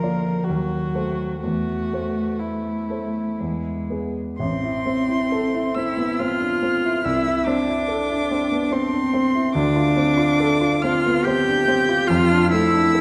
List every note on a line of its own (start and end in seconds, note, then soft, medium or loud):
0.00 0.48 D2 medium
0.00 0.50 F3 medium
0.00 0.03 A#3 soft
0.00 0.43 A#3 soft
0.00 0.03 F4 soft
0.00 0.43 F4 soft
0.00 0.46 A#4 medium
0.00 0.03 D5 soft
0.00 0.43 D5 soft
0.45 1.43 F#3 medium
0.45 1.41 F#4 medium
0.49 0.93 D#2 medium
0.95 1.39 A3 soft
0.95 1.39 A4 soft
0.95 1.39 C5 soft
1.41 1.91 E2 soft
1.41 3.41 A3 soft
1.41 2.41 F#4 medium
1.93 2.86 A3 soft
1.93 2.86 A4 soft
1.93 2.86 C5 soft
2.40 3.89 E4 medium
2.90 3.35 A3 soft
2.90 3.35 A4 soft
2.90 3.36 C5 soft
3.40 3.89 E2 soft
3.40 4.18 G#3 soft
3.90 4.35 B3 soft
3.90 4.35 G#4 soft
3.90 4.36 B4 soft
4.38 7.01 A1 medium
4.38 5.79 C4 medium
4.38 5.76 C6 medium
4.63 5.00 E4 soft
4.86 5.22 C4 soft
5.09 5.45 E4 soft
5.32 5.68 A4 medium
5.54 5.90 E4 soft
5.75 6.11 C4 soft
5.75 6.22 E4 medium
5.75 6.21 E6 medium
5.97 6.19 B3 soft
6.19 6.54 C4 medium
6.19 7.04 F4 medium
6.19 7.06 F6 medium
6.40 6.62 D4 soft
6.63 6.97 C4 soft
6.85 7.05 E4 soft
7.05 9.52 C2 medium
7.05 7.49 E4 medium
7.05 7.46 E6 medium
7.27 7.60 E4 medium
7.44 7.80 C4 medium
7.44 8.75 D4 medium
7.44 8.73 D6 medium
7.68 8.02 E4 medium
7.88 8.22 A4 medium
8.10 8.43 E4 medium
8.31 8.64 C4 medium
8.52 8.73 B3 soft
8.71 9.05 C4 medium
8.71 9.56 C4 medium
8.71 9.54 C6 medium
8.93 9.14 D4 soft
9.14 9.47 C4 medium
9.34 9.55 E4 medium
9.55 12.04 D2 medium
9.55 10.81 D4 loud
9.55 10.83 D6 loud
9.76 10.10 F4 medium
9.96 10.31 C4 medium
10.17 10.52 F4 medium
10.40 10.74 A4 medium
10.61 10.96 F4 medium
10.82 11.17 C4 medium
10.82 11.26 F4 medium
10.82 11.27 F6 loud
11.06 11.26 B3 medium
11.24 11.59 C4 medium
11.24 12.09 G4 medium
11.24 12.09 G6 loud
11.48 11.68 D4 medium
11.68 12.01 C4 medium
11.89 12.09 F4 medium
12.07 13.01 F2 medium
12.07 12.53 F4 loud
12.07 12.51 F6 loud
12.31 12.65 D4 medium
12.51 12.86 A3 medium
12.51 13.01 E4 loud
12.51 13.01 E6 loud
12.74 13.01 D4 medium
12.95 13.01 A4 medium